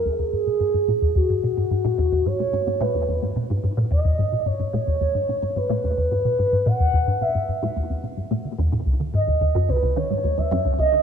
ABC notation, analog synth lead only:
X:1
M:4/4
L:1/16
Q:1/4=109
K:Elyd
V:1 name="Analog synth lead"
G8 F8 | c4 B4 z4 d4 | c8 B8 | f4 e4 z8 |
z2 d4 B2 c3 e3 d2 |]